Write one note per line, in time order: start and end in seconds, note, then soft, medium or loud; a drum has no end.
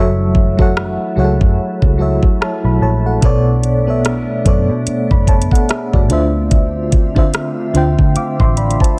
0.00 0.96 F#1 loud
0.00 0.37 F#3 loud
0.00 3.19 F#3 medium
0.00 8.99 A3 medium
0.00 3.19 E4 medium
0.00 0.37 F#4 medium
0.00 0.38 A4 medium
0.00 0.39 C#5 medium
0.00 0.39 E5 loud
0.35 kick medium
0.57 1.01 F#3 medium
0.57 1.02 F#4 medium
0.57 1.02 A4 medium
0.57 1.03 C#5 medium
0.57 kick loud
0.62 1.03 F#5 medium
0.77 cross-stick loud
1.16 1.38 C#2 medium
1.16 1.77 F#3 medium
1.16 1.78 F#4 medium
1.16 1.25 G#4 medium
1.16 1.79 C#5 medium
1.20 1.79 F#5 medium
1.24 1.81 A4 medium
1.41 1.56 F#2 medium
1.41 kick medium
1.58 muted picked electric bass stroke soft
1.82 2.18 C#2 medium
1.82 kick medium
1.98 2.86 F#3 medium
1.98 2.87 F#4 medium
1.98 2.41 A4 medium
1.98 2.40 C#5 medium
2.02 2.42 E5 medium
2.23 kick medium
2.41 2.64 C#5 medium
2.41 2.63 A5 medium
2.41 cross-stick loud
2.64 2.79 B1 medium
2.64 2.81 B5 medium
2.82 3.18 A#1 medium
2.82 3.05 C#5 medium
2.82 3.05 A5 medium
3.06 3.22 A4 medium
3.06 3.45 F#5 medium
3.21 4.25 B1 medium
3.21 3.66 B2 loud
3.21 3.66 B3 medium
3.21 6.08 B3 medium
3.21 6.08 D4 medium
3.21 3.67 A4 medium
3.21 3.67 C#5 medium
3.21 kick loud
3.21 closed hi-hat medium
3.25 3.68 D5 loud
3.63 closed hi-hat medium
3.86 4.30 B2 medium
3.86 4.30 B3 medium
3.86 4.31 A4 medium
3.86 4.31 C#5 medium
3.90 4.32 E5 medium
4.05 cross-stick loud
4.05 closed hi-hat medium
4.44 4.67 F#2 medium
4.44 5.06 B2 medium
4.44 5.06 B3 medium
4.44 4.87 A4 medium
4.44 4.88 C#5 medium
4.44 kick medium
4.44 closed hi-hat medium
4.49 4.88 D5 medium
4.70 4.85 B2 medium
4.87 muted picked electric bass stroke soft
4.87 closed hi-hat medium
5.11 5.47 F#1 medium
5.11 5.28 D5 medium
5.11 5.27 B5 medium
5.11 kick medium
5.27 5.51 C#5 medium
5.27 5.51 A5 medium
5.27 kick medium
5.27 closed hi-hat medium
5.42 closed hi-hat medium
5.51 5.69 A4 medium
5.51 5.69 F#5 medium
5.51 kick medium
5.55 closed hi-hat medium
5.69 5.92 G#4 medium
5.69 5.92 E5 medium
5.69 cross-stick loud
5.69 closed hi-hat medium
5.93 6.11 F#1 medium
5.93 6.32 F#4 soft
5.93 6.32 D5 medium
5.93 kick medium
6.09 7.40 D2 medium
6.09 6.92 D3 medium
6.09 8.99 D3 medium
6.09 8.99 C4 medium
6.09 6.92 D4 medium
6.09 8.99 F4 medium
6.09 6.93 F4 medium
6.09 6.93 C5 medium
6.09 8.99 E5 medium
6.09 closed hi-hat medium
6.13 6.94 E5 medium
6.51 kick loud
6.51 closed hi-hat medium
6.92 kick loud
6.92 closed hi-hat medium
7.15 7.59 D3 medium
7.15 7.59 D4 medium
7.15 7.60 F4 medium
7.15 7.60 C5 medium
7.15 kick loud
7.19 7.61 E5 medium
7.34 cross-stick loud
7.34 closed hi-hat medium
7.73 7.96 D2 medium
7.73 8.35 D3 medium
7.73 8.35 D4 medium
7.73 8.36 F4 medium
7.73 8.17 C5 medium
7.73 closed hi-hat medium
7.77 8.17 G5 medium
7.99 8.14 D3 medium
7.99 kick medium
8.16 8.39 F5 soft
8.16 8.39 D6 medium
8.16 muted picked electric bass stroke soft
8.16 closed hi-hat medium
8.40 8.76 A1 medium
8.40 8.57 E5 medium
8.40 8.56 C6 medium
8.40 kick medium
8.57 8.80 D5 medium
8.57 8.80 B5 medium
8.57 closed hi-hat medium
8.71 closed hi-hat medium
8.80 8.98 C5 medium
8.80 8.97 A5 medium
8.80 kick medium
8.80 closed hi-hat medium